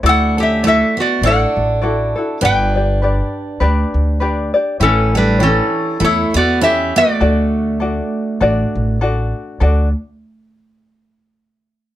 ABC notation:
X:1
M:4/4
L:1/8
Q:"Swing" 1/4=100
K:D
V:1 name="Resonator guitar played with a steel bar"
[Af] [Ge] [Ae] [Fd] [Af]4 | [Bg]6 z2 | [CA] [DB] [CA]2 [Ec] [Fd] [Ge] [Fd]- | [Fd]6 z2 |
z8 |]
V:2 name="Ukulele"
[EFAd] [EA] [EFAd]2 [EFAd]2 [EFAd] [EFA] | [DGBd] [DGd] [DGBd]2 [DGBd]2 [DGBd] [DGd] | [EGAc] [EGA] [EGAc]2 [EA]2 [EA]2 | [DFAd]2 [DFAd]2 [DFAd]2 [DFAd]2 |
[DFAd] z6 z |]
V:3 name="Steel-string acoustic guitar"
D C A, B, D4 | D6 z2 | E, G, E,2 A, B, C A,- | A,6 z2 |
z8 |]
V:4 name="Upright bass" clef=bass
D,,4 A,,, A,,,3 | G,,,4 D,, D,,3 | A,,,4 E,, E,,3 | D,,4 A,,, A,,,3 |
D,, z6 z |]